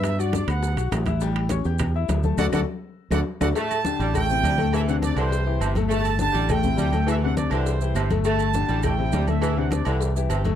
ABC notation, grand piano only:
X:1
M:4/4
L:1/8
Q:1/4=205
K:G
V:1 name="Grand piano"
[B,Bb] [F,Ff] [Ddd'] [B,Bb]2 [Fff']2 [Eee'] | [G,Gg]2 [^C^c^c'] [Ggg']2 [Eee']2 [A,Aa] | [FAd] [FAd] z3 [FAd] z [FAd] | [A,,A,A]2 [D,DG]2 [A,,A,A] [C,CE]2 [A,,A,A]- |
[A,,A,A] [C,CD]2 [E,EG]2 [E,EG]2 [A,,A,A] | [A,,A,A]2 [D,DG]2 [A,,A,A] [C,CE]2 [A,,A,A]- | [A,,A,A] [C,CD]2 [E,EG]2 [E,EG]2 [A,,A,A] | [A,,A,A]2 [D,DG]2 [A,,A,A] [C,CE]2 [A,,A,A]- |
[A,,A,A] [C,CD]2 [E,EG]2 [E,EG]2 [A,,A,A] |]